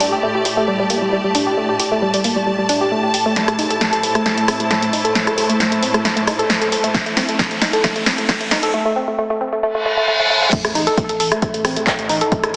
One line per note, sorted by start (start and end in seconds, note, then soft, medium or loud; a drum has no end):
0.00 3.35 A2 medium
0.00 3.35 A3 medium
0.00 0.08 D4 loud
0.00 4.56 G4 medium
0.00 4.54 D5 medium
0.00 8.74 A5 medium
0.00 open hi-hat medium
0.12 0.17 G4 loud
0.23 0.28 A3 medium
0.35 0.39 G4 medium
0.45 0.50 G4 medium
0.45 open hi-hat loud
0.57 0.62 A3 loud
0.68 0.73 G3 loud
0.80 0.86 G3 loud
0.90 0.95 A#3 medium
0.90 open hi-hat loud
1.02 1.05 G3 medium
1.12 1.20 G3 medium
1.24 1.29 G3 medium
1.35 1.42 D4 loud
1.35 open hi-hat loud
1.47 1.51 G4 loud
1.57 1.62 A3 medium
1.69 1.74 G4 medium
1.80 1.85 G4 medium
1.80 open hi-hat loud
1.91 1.96 A3 loud
2.02 2.07 G3 loud
2.14 2.21 G3 loud
2.14 open hi-hat medium
2.24 2.29 A#3 medium
2.24 open hi-hat loud
2.36 2.39 G3 medium
2.47 2.54 G3 medium
2.58 2.63 G3 medium
2.69 2.77 D4 loud
2.69 open hi-hat loud
2.81 2.85 G4 loud
2.92 2.97 A3 medium
3.03 3.08 G4 medium
3.14 3.19 G4 medium
3.14 open hi-hat loud
3.26 3.30 A3 loud
3.36 8.74 A2 medium
3.36 8.74 A3 medium
3.36 8.74 E4 medium
3.36 snare soft
3.36 closed hi-hat medium
3.36 riser medium
3.48 3.53 A3 medium
3.48 cross-stick medium
3.48 closed hi-hat medium
3.59 3.66 D#4 loud
3.59 open hi-hat loud
3.70 3.75 A4 loud
3.70 closed hi-hat medium
3.81 3.86 A3 medium
3.81 snare medium
3.81 closed hi-hat medium
3.91 3.97 A4 medium
3.91 8.74 C5 medium
3.91 closed hi-hat medium
4.03 4.08 A4 medium
4.03 open hi-hat loud
4.15 4.20 A3 loud
4.15 cross-stick medium
4.15 closed hi-hat medium
4.26 4.31 A3 loud
4.26 snare medium
4.26 closed hi-hat medium
4.38 4.44 A3 loud
4.38 closed hi-hat medium
4.48 4.53 C4 medium
4.48 cross-stick medium
4.48 open hi-hat loud
4.60 4.63 A3 medium
4.60 closed hi-hat medium
4.70 4.78 A3 medium
4.70 snare medium
4.70 closed hi-hat medium
4.82 4.87 A3 medium
4.82 closed hi-hat medium
4.93 5.01 D#4 loud
4.93 open hi-hat loud
5.05 5.09 A4 loud
5.05 closed hi-hat medium
5.15 5.20 A3 medium
5.15 snare medium
5.15 closed hi-hat medium
5.27 5.32 A4 medium
5.27 cross-stick medium
5.27 closed hi-hat medium
5.38 5.43 A4 medium
5.38 open hi-hat loud
5.49 5.54 A3 loud
5.49 closed hi-hat medium
5.60 5.65 A3 loud
5.60 snare medium
5.60 closed hi-hat medium
5.72 5.79 A3 loud
5.72 closed hi-hat medium
5.82 5.88 C4 medium
5.82 open hi-hat loud
5.94 5.97 A3 medium
5.94 cross-stick medium
5.94 closed hi-hat medium
6.05 6.12 A3 medium
6.05 snare medium
6.05 closed hi-hat medium
6.16 6.21 A3 medium
6.16 closed hi-hat medium
6.27 6.35 D#4 loud
6.27 cross-stick medium
6.27 open hi-hat loud
6.39 6.44 A4 loud
6.39 closed hi-hat medium
6.50 6.55 A3 medium
6.50 snare medium
6.50 closed hi-hat medium
6.61 6.66 A4 medium
6.61 closed hi-hat medium
6.72 6.77 A4 medium
6.72 open hi-hat loud
6.84 6.88 A3 loud
6.84 closed hi-hat medium
6.94 7.00 A3 medium
6.94 kick loud
6.94 snare medium
6.94 closed hi-hat medium
7.06 7.13 A3 medium
7.06 closed hi-hat medium
7.17 7.22 C4 medium
7.17 snare medium
7.17 open hi-hat loud
7.29 7.31 A3 medium
7.29 closed hi-hat medium
7.39 7.47 A3 medium
7.39 kick loud
7.39 snare medium
7.39 closed hi-hat medium
7.51 7.56 A3 medium
7.51 closed hi-hat medium
7.62 7.69 D#4 medium
7.62 snare medium
7.62 open hi-hat loud
7.73 7.78 A4 loud
7.73 closed hi-hat medium
7.84 7.89 A3 medium
7.84 kick loud
7.84 snare medium
7.84 closed hi-hat medium
7.96 8.03 A3 loud
7.96 closed hi-hat medium
8.06 8.11 C4 medium
8.06 snare medium
8.06 open hi-hat loud
8.18 8.21 A3 medium
8.18 closed hi-hat medium
8.29 8.36 A3 medium
8.29 kick loud
8.29 snare medium
8.29 closed hi-hat medium
8.41 8.45 A3 medium
8.41 closed hi-hat medium
8.51 8.59 D#4 loud
8.51 snare medium
8.51 open hi-hat loud
8.63 8.68 A4 loud
8.63 closed hi-hat medium
8.74 8.79 A3 loud
8.85 8.92 A3 loud
8.96 9.01 C4 medium
9.08 9.11 A3 medium
9.18 9.23 A3 loud
9.30 9.37 A3 loud
9.41 9.46 C4 medium
9.53 9.55 A3 medium
9.63 9.68 A3 loud
9.63 reverse cymbal medium
9.75 9.82 A3 loud
9.86 9.91 A3 loud
9.97 10.04 A3 loud
10.08 10.13 A3 loud
10.20 10.26 A3 loud
10.30 10.35 A3 loud
10.42 10.49 A3 loud
10.53 12.56 A2 medium
10.53 10.60 A3 medium
10.53 12.56 A3 medium
10.53 kick loud
10.53 closed hi-hat medium
10.53 crash loud
10.53 sub drop medium
10.64 10.75 A1 medium
10.64 10.69 A3 medium
10.64 cross-stick medium
10.64 closed hi-hat medium
10.75 10.87 A1 loud
10.75 10.83 D#4 loud
10.75 open hi-hat loud
10.87 10.91 A4 loud
10.87 closed hi-hat medium
10.97 11.03 A3 medium
10.97 kick loud
10.97 closed hi-hat medium
11.09 11.19 A1 medium
11.09 11.14 A4 medium
11.09 closed hi-hat medium
11.20 11.31 A1 loud
11.20 11.25 A4 medium
11.20 open hi-hat loud
11.32 11.36 A3 loud
11.32 cross-stick medium
11.32 closed hi-hat medium
11.42 11.47 A3 loud
11.42 kick loud
11.42 closed hi-hat medium
11.54 11.64 A1 medium
11.54 11.61 A3 loud
11.54 closed hi-hat medium
11.65 11.76 A1 loud
11.65 11.70 C4 medium
11.65 cross-stick medium
11.65 open hi-hat loud
11.76 11.79 A3 medium
11.76 closed hi-hat medium
11.87 11.95 A3 medium
11.87 kick loud
11.87 clap loud
11.87 closed hi-hat medium
11.99 12.09 A1 medium
11.99 12.03 A3 medium
11.99 closed hi-hat medium
12.09 12.21 A1 loud
12.09 12.17 D#4 loud
12.09 open hi-hat loud
12.21 12.26 A4 loud
12.21 closed hi-hat medium
12.32 12.37 A3 medium
12.32 kick loud
12.32 closed hi-hat medium
12.44 12.54 A1 medium
12.44 12.48 A4 medium
12.44 cross-stick medium
12.44 closed hi-hat medium